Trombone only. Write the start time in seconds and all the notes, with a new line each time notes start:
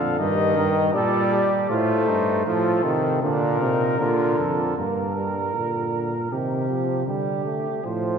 Already playing: D3
0.20 D#3
0.94 G3
1.70 A3
2.46 F3
2.84 D#3
3.23 A#2
3.99 D3
4.78 A#3
5.17 G3
5.56 D3
6.31 D#3
6.69 F3
7.07 G3
7.44 A3
7.84 F3